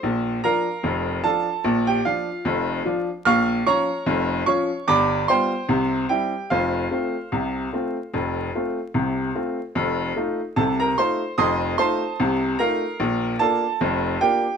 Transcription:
X:1
M:2/4
L:1/16
Q:"Swing 16ths" 1/4=74
K:F
V:1 name="Upright piano"
[cc']2 [Bfb]4 [Aa]2- | [Aa] [Gg] [Ff]2 z4 | [f_d'f']2 [_dbd']4 [dd']2 | [d=bd']2 [cgc']4 [Gg]2 |
[Fcf]8- | [Fcf]4 z4 | z4 [Aa] [Bb] [cc']2 | [_ec'_e']2 [cac']4 [Bfb]2- |
[Bfb]2 [Aa]4 [Gg]2 |]
V:2 name="Upright piano"
[B,,,B,,]2 [F,DF]2 [F,,,F,,]2 [F,DF]2 | [B,,,B,,]2 [F,D]2 [F,,,F,,]2 [F,DF]2 | [B,,,B,,]2 [F,_DF]2 [F,,,F,,]2 [F,DF]2 | [G,,,G,,]2 [G,=B,F]2 [C,,C,]2 [G,CE]2 |
[F,,,F,,]2 [A,CF]2 [C,,C,]2 [A,CF]2 | [F,,,F,,]2 [A,CF]2 [C,,C,]2 [A,CF]2 | [F,,,F,,]2 [A,_EF]2 [C,,C,]2 [A,EF]2 | [F,,,F,,]2 [A,_EF]2 [C,,C,]2 [A,EF]2 |
[B,,,B,,]2 [B,DF]2 [F,,,F,,]2 [B,DF]2 |]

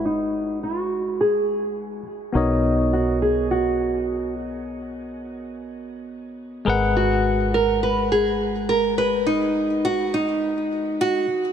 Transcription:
X:1
M:4/4
L:1/8
Q:1/4=104
K:G#m
V:1 name="Tine electric piano"
[G,FGBf]6- [G,FGBf] z | [B,FAcd]8- | [B,FAcd]6- [B,FAcd] [G,GABf]- | [G,GABf]8- |
[G,GABf]6- [G,GABf] z |]
V:2 name="Nylon-string guitar"
D2 F2 G3 z | D2 F G F3 z | z8 | F2 A B G2 A B |
D2 F D3 F2 |]
V:3 name="Fretless electric bass" clef=bass
G,,,8 | B,,,8- | B,,,6- B,,, G,,,- | G,,,8- |
G,,,8 |]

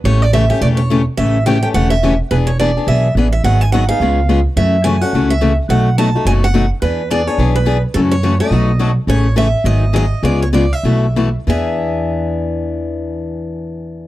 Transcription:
X:1
M:4/4
L:1/8
Q:"Swing" 1/4=213
K:Emix
V:1 name="Steel-string acoustic guitar"
c d e e d c2 z | e2 =g g f e2 z | B c d2 e2 z e | f g f =f4 z |
e2 g f2 e2 z | f2 a2 g f2 z | B2 d c2 B2 z | A c2 ^d4 z |
c2 e2 ^d2 d2 | d c d e4 z | e8- | e8 |]
V:2 name="Steel-string acoustic guitar"
[C,E,A,C=G] z [C,E,A,CG] [A,CG] [C,E,A,CG] z [C,E,A,CG] z | [C,E,A,C=G] z [C,E,A,CG] [A,CG] [C,E,A,CG] z [C,E,A,CG] z | [E,B,DG] z [E,B,DG] [B,DG] [E,B,DG] z [E,B,DG] z | [^D,F,B,^DG] z [D,F,B,DG] [B,DG] [C,G,B,^EG] z [C,G,B,EG] z |
[C,E,A,CF] z [C,E,A,CF] [A,CF] [C,E,A,CF] z [C,E,A,CF] z | [B,,F,A,^DF] z [B,,F,A,DF] [A,DF] [B,,F,A,DF] z [B,,F,A,DF] z | [E,B,DG] z [E,B,DG] [B,DG] [E,B,DG] z [E,B,DG] z | [C,E,A,CF] z [C,E,A,CF] [A,CF] [B,,F,A,^DF] z [B,,F,A,DF] z |
[C,E,A,CG] z [C,E,A,CG] z [^D,F,B,^DG] z [D,F,B,DG] z | [C,G,B,^EG] z [C,G,B,EG] z [B,,=E,A,=EF] z [B,,E,A,EF] z | [E,B,DG]8- | [E,B,DG]8 |]
V:3 name="Upright bass" clef=bass
A,,,4 E,,,4 | A,,,4 E,,,4 | E,,,4 B,,,2 A,,,2 | G,,,4 C,,4 |
F,,4 C,,4 | B,,,4 F,,,4 | E,,4 B,,,4 | F,,4 B,,,4 |
A,,,4 G,,,4 | C,,4 B,,,4 | E,,8- | E,,8 |]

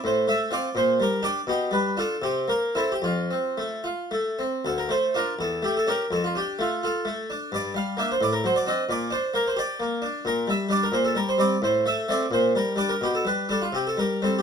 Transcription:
X:1
M:6/8
L:1/16
Q:3/8=85
K:F
V:1 name="Harpsichord"
c2 e2 d2 c2 B2 d2 | G2 =B2 A2 G2 _B2 A G | F8- F2 z2 | [K:Dm] A B c2 B2 A2 G A B2 |
A F G2 F2 A6 | d2 f2 e c d B c d _e2 | d2 c2 B c d6 | [K:Gdor] B2 e2 d B c A B c d2 |
c2 e2 d2 c2 B2 d B | G A =B2 A F G A _B2 A G |]
V:2 name="Harpsichord"
A,,2 A,2 [CF]2 B,,2 G,2 [DG]2 | =B,,2 G,2 [DF]2 C,2 _B,2 [CE]2 | F,,2 C2 A,2 F2 A,2 C2 | [K:Dm] D,,2 A,2 [DF]2 E,,2 A,2 [^CG]2 |
F,,2 D2 A,2 F2 A,2 D2 | G,,2 G,2 [B,D]2 A,,2 ^F,2 [CD]2 | B,,2 D2 B,2 G2 B,2 D2 | [K:Gdor] B,,2 G,2 [G,D]2 B,,2 G,2 [G,C]2 |
A,,2 A,2 [A,C]2 B,,2 G,2 [G,D]2 | =B,,2 G,2 [G,D]2 C,2 G,2 [G,C]2 |]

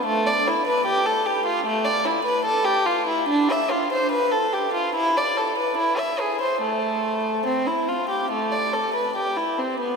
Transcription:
X:1
M:4/4
L:1/16
Q:1/4=72
K:Am
V:1 name="Violin"
A, d E B G A G F A, d E B A G F E | D e F c B A G F E d A B E e ^G c | A,4 C E F G A, d A B G E C B, |]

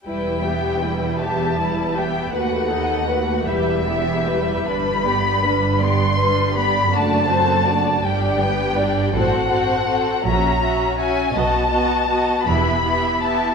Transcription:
X:1
M:6/8
L:1/8
Q:3/8=54
K:Em
V:1 name="Violin section"
g3 a2 g | f3 e3 | b3 c'2 b | a3 g3 |
f3 ^a2 ^g | a3 b2 a |]
V:2 name="Violin section"
[EB] [Ge] [EB] [Ge] [EB] [Ge] | B [A^d] B [EB] [Ge] [EB] | B [Gd] B [Gd] B [Gd] | [Fd] [Ac] [Fd] [Gd] [Bg] [Gd] |
[Ac] [Ac] [Ac] [Fe] [Fe] [Fe] | [F^d] [Fd] [Fd] [Ge] [Ge] [Ge] |]
V:3 name="Viola section"
[G,E] [B,G] [G,E] [B,G] [G,E] [B,G] | [A,F] [B,^D] [A,F] [G,G] [B,E] [G,G] | [G,D] B, [G,D] B, [G,D] B, | [A,D] [CF] [A,D] [G,D] [B,G] [G,D] |
[CF] [CF] [CF] [^CF] [CF] [CF] | [B,F] [B,F] [B,F] [B,E] [B,E] [B,E] |]
V:4 name="Cello section" clef=bass
E,,6 | ^D,,3 E,,3 | G,,6 | F,,3 G,,3 |
A,,3 ^A,,3 | B,,3 E,,3 |]
V:5 name="Double bass section" clef=bass
E,,,6 | ^D,,3 E,,,3 | G,,,6 | F,,,3 G,,,3 |
A,,,3 ^A,,,3 | B,,,3 E,,,3 |]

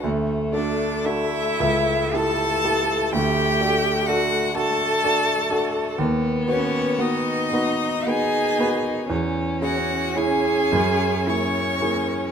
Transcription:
X:1
M:6/8
L:1/8
Q:3/8=39
K:D
V:1 name="Violin"
z d e2 a2 | g2 f a3 | [K:B] z c d2 g2 | z f g2 c'2 |]
V:2 name="Cello"
z D E2 A2 | G2 F A3 | [K:B] z C D2 G2 | z F G2 c2 |]
V:3 name="Grand piano"
D,, [DFA] [DFA] C,, [EGA] [EGA] | D,, [DFA] [DFA] [DFA] [DFA] [DFA] | [K:B] D,, [B,FB] [B,FB] [B,FB] [B,FB] [B,FB] | E,, [CEG] [CEG] F,, [A,EG] [A,EG] |]
V:4 name="Violin"
A,6- | A,6 | [K:B] B,3 D3 | C6 |]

